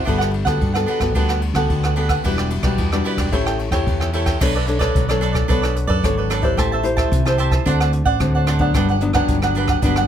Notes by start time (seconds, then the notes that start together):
0.05 G1 G3 B3 D4 F#4 G4 A4 B4 F#5, kick, ride
0.18 G4 B4 F#5, cross-stick
0.31 muted cavaquinho stroke, ride
0.45 D2 B3 F#4 G4 A4 B4 F#5, kick, cross-stick, ride
0.61 G2 D3, kick, ride
0.74 B3 F#4 G4 A4 B4 F#5, cross-stick
0.86 D4 G4 B4 F#5, ride
0.99 G1 B3 F#4 G4 A4 B4 F#5, kick, cross-stick, ride
1.15 D2 G3 B3 D4 F#4 G4 A4 B4 F#5, kick, ride
1.29 G4 B4 F#5, cross-stick
1.42 muted cavaquinho stroke, ride
1.53 D2 B3 F#4 G4 A4 B4 F#5, kick, cross-stick, ride
1.70 D2 D3, kick, ride
1.84 G4 B4 F#5, cross-stick
1.96 B3 D4 F#4 G4 A4 B4 F#5, ride
2.09 G4 B4 F#5, kick, cross-stick, ride
2.24 E1 E3 G3 D4 E4 F#4 G4 B4 D5, kick, ride
2.38 G4 B4 D5, cross-stick
2.50 muted cavaquinho stroke, ride
2.62 B1 G3 D4 F#4 G4 B4 D5, kick, cross-stick, ride
2.78 E2 B2, kick, ride
2.92 G3 D4 F#4 G4 B4 D5, cross-stick
3.04 E4 G4 B4 D5, ride
3.17 E1 B4 D5, kick, cross-stick, ride
3.21 G4
3.32 A1 A3 E4 G4 A4 C#5 G5, kick, ride
3.46 A4 C#5 G5, cross-stick
3.59 muted cavaquinho stroke, ride
3.71 E2 E4 G4 A4 C#5 G5, kick, cross-stick, ride
3.87 E2 E3, kick, ride
4.00 A4 C#5 G5, cross-stick
4.13 E4 G4 A4 C#5 G5, ride
4.26 A4 C#5 G5, kick, cross-stick, ride
4.40 B1 B3 D4 A4 B4 C#5 D5, kick, cross-stick, crash
4.55 A4 B4 D5, closed hi-hat
4.67 D4 A4 C#5, muted cavaquinho stroke, closed hi-hat
4.79 D4 A4 B4 C#5 D5, kick, cross-stick
4.95 B1 F#3, kick, closed hi-hat
5.08 D4 A4 B4 C#5 D5, cross-stick
5.21 D4 A4 B4 D5, closed hi-hat
5.33 A4 B4 D5, kick, cross-stick, closed hi-hat
5.48 B1 B3 D4 A4 B4 C#5 D5, kick, closed hi-hat
5.62 A4 B4 D5, cross-stick
5.76 muted cavaquinho stroke, closed hi-hat
5.87 F#2 A4 B4 D5, kick, closed hi-hat
6.03 G#1 F#3 D4 A4 C#5, kick, cross-stick, closed hi-hat
6.17 A4 B4 D5
6.30 D4 A4 B4 D5, cross-stick, closed hi-hat
6.42 E4 G4 A4 B4 C5 D5, kick, closed hi-hat
6.57 A1 A3 G4 C5 E5 A5, kick, cross-stick, closed hi-hat
6.72 C5 E5 A5, closed hi-hat
6.83 E4 G4 C5, muted cavaquinho stroke, closed hi-hat
6.97 C5 E5 A5, kick, cross-stick, closed hi-hat
7.11 C2 E3, kick, closed hi-hat
7.25 E4 G4 C5 E5 A5, cross-stick, closed hi-hat
7.38 G4 C5 E5 A5, closed hi-hat
7.51 C5 E5 A5, kick, cross-stick, closed hi-hat
7.65 D2 D3 A3 C4 D4 F#4 C5 D5 F#5, kick, closed hi-hat
7.80 C5 D5 F#5, cross-stick, closed hi-hat
7.93 muted cavaquinho stroke, closed hi-hat
8.04 A1 C5 D5 F#5, kick, closed hi-hat
8.20 D2 A2 A3 C4 F#4, kick, cross-stick, closed hi-hat
8.35 C5 D5 F#5
8.47 D4 C5 D5 F#5, cross-stick, closed hi-hat
8.59 F#3 B3 D4 C5 D5 F#5, kick, closed hi-hat
8.74 G1 G2 D4 G4 B4 F#5, kick, cross-stick, closed hi-hat
8.88 G4 B4 F#5, closed hi-hat
9.01 F#3 B3 D4, muted cavaquinho stroke, closed hi-hat
9.13 F#3 B3 D4 G4 B4 F#5, kick, cross-stick
9.28 G1 D3, kick, closed hi-hat
9.42 F#3 B3 D4 G4 B4 F#5, cross-stick
9.54 D4 G4 B4 F#5, closed hi-hat
9.67 G4 B4 F#5, kick, cross-stick, closed hi-hat
9.82 G1 G2 F#3 B3 D4 G4 B4 F#5, kick, closed hi-hat
9.96 G4 B4 F#5, cross-stick